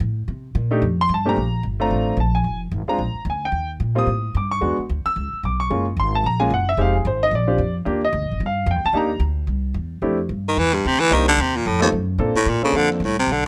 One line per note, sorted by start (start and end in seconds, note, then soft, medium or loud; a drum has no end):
0.00 0.27 A2 medium
0.28 0.54 C3 medium
0.55 0.81 A#2 loud
0.71 0.81 A3 medium
0.71 0.81 D4 medium
0.71 0.81 D#4 medium
0.71 0.81 G4 medium
0.82 1.08 F2 medium
1.01 1.10 C6 loud
1.09 1.35 G2 medium
1.14 1.27 A5 medium
1.25 1.35 A#2 medium
1.25 1.35 A3 medium
1.25 1.35 C4 medium
1.25 1.35 D4 medium
1.25 1.36 G4 medium
1.25 1.63 A#5 medium
1.36 1.63 A#1 medium
1.63 1.90 G1 medium
1.80 2.15 A3 medium
1.80 2.16 C4 medium
1.80 2.16 D4 medium
1.80 2.16 F4 medium
1.80 2.16 A#5 medium
1.91 2.16 A1 medium
2.17 2.43 A#1 medium
2.17 2.34 A5 medium
2.35 2.59 G#5 medium
2.44 2.71 F1 medium
2.71 2.87 G#1 medium
2.87 2.98 G#3 medium
2.87 2.98 C4 medium
2.87 2.98 D4 medium
2.87 2.98 F4 medium
2.87 3.24 A#5 medium
2.87 muted upright bass stroke soft
2.99 3.14 A#1 medium
3.14 muted upright bass stroke soft
3.25 3.51 D2 medium
3.30 3.43 G#5 medium
3.45 3.69 G5 medium
3.52 3.79 D#2 medium
3.80 4.06 A#2 medium
3.95 4.06 G3 medium
3.95 4.06 A#3 medium
3.95 4.06 C4 medium
3.95 4.06 F4 medium
3.95 4.33 D#6 loud
4.07 4.33 A2 medium
4.35 4.61 G2 medium
4.35 4.51 D6 medium
4.51 4.76 C#6 medium
4.61 4.76 E2 medium
4.61 4.76 G#3 medium
4.61 4.76 B3 medium
4.61 4.76 D4 medium
4.61 4.76 F#4 medium
4.78 muted upright bass stroke soft
4.89 5.04 D2 medium
5.05 5.41 E6 loud
5.05 muted upright bass stroke soft
5.16 5.31 C#2 medium
5.33 muted upright bass stroke soft
5.43 5.69 B1 medium
5.43 5.59 D6 medium
5.60 5.84 C#6 medium
5.70 5.96 F#1 medium
5.70 5.84 G#3 medium
5.70 5.85 A#3 medium
5.70 5.85 C#4 medium
5.70 5.85 F4 medium
5.97 6.23 G#1 medium
5.97 6.14 C6 medium
6.15 6.25 A5 loud
6.24 6.50 A#1 medium
6.24 6.41 A#5 loud
6.40 6.50 G#3 medium
6.40 6.50 A#3 medium
6.40 6.50 C#4 medium
6.40 6.50 F4 medium
6.40 6.50 G#5 medium
6.50 6.77 F#1 medium
6.50 6.68 F#5 medium
6.69 6.79 E5 loud
6.77 7.04 F1 medium
6.77 6.93 G#3 medium
6.77 6.93 C4 medium
6.77 6.93 D#4 medium
6.77 6.93 G4 medium
6.77 6.95 F5 medium
6.95 7.05 G#4 medium
7.05 7.30 G#1 medium
7.05 7.22 C5 medium
7.23 7.33 D#5 loud
7.31 7.58 A#1 medium
7.35 7.74 D5 medium
7.47 7.58 C4 medium
7.47 7.58 D4 medium
7.47 7.58 F4 medium
7.47 7.58 G4 medium
7.58 7.85 F2 medium
7.85 8.12 D#2 medium
7.85 8.00 A#3 medium
7.85 8.00 D4 medium
7.85 8.01 F4 medium
7.85 8.01 G4 medium
8.05 8.39 D#5 loud
8.13 8.23 D2 loud
8.22 8.31 A#1 medium
8.32 8.40 G1 medium
8.40 8.66 G2 medium
8.46 8.69 F5 medium
8.66 8.76 F2 loud
8.71 8.85 G5 medium
8.76 8.84 D#2 medium
8.85 8.92 D2 medium
8.85 8.95 A5 loud
8.93 9.19 D#2 medium
8.93 9.08 A#3 medium
8.93 9.08 D4 medium
8.93 9.09 D#4 medium
8.93 9.09 G4 medium
8.97 9.21 A#5 medium
9.20 9.47 D2 loud
9.47 9.74 C2 medium
9.74 10.01 E2 medium
10.02 10.28 F2 medium
10.02 10.17 A3 medium
10.02 10.17 C4 medium
10.02 10.17 D4 medium
10.02 10.17 E4 medium
10.02 10.17 G4 medium
10.29 10.56 G2 medium
10.48 10.60 D#3 medium
10.57 10.83 E2 medium
10.57 10.76 E3 medium
10.74 10.88 G2 medium
10.85 11.10 D2 medium
10.85 11.01 C3 medium
11.00 11.15 E3 loud
11.10 11.37 C2 medium
11.10 11.27 D#3 medium
11.10 11.25 A#3 medium
11.10 11.25 C4 medium
11.10 11.25 D4 medium
11.10 11.25 D#4 medium
11.10 11.26 G4 medium
11.28 11.43 D3 medium
11.38 11.64 D#2 loud
11.38 11.58 C3 medium
11.56 11.68 A#2 medium
11.66 11.91 F2 medium
11.66 11.81 A2 medium
11.80 11.88 D#2 medium
11.80 11.90 A3 medium
11.80 11.91 C4 medium
11.80 11.91 D#4 medium
11.80 11.91 F4 medium
11.80 11.91 A4 medium
11.92 12.18 F#2 medium
12.18 12.34 A#2 medium
12.18 12.33 A#3 medium
12.18 12.33 C4 medium
12.18 12.33 D4 medium
12.18 12.33 F4 medium
12.18 12.34 A4 medium
12.34 12.50 A2 medium
12.34 muted upright bass stroke soft
12.46 12.61 A2 medium
12.46 12.64 A#2 medium
12.62 12.78 C#3 medium
12.62 12.98 A#3 medium
12.62 12.98 C4 medium
12.62 12.98 D4 medium
12.62 12.98 F4 medium
12.62 12.98 A4 medium
12.62 muted upright bass stroke soft
12.73 12.99 F2 medium
12.73 12.91 D3 medium
12.92 13.06 F2 soft
13.00 13.26 C2 medium
13.04 13.18 A2 medium
13.19 13.33 C3 medium
13.27 13.47 B1 medium
13.32 13.46 D3 medium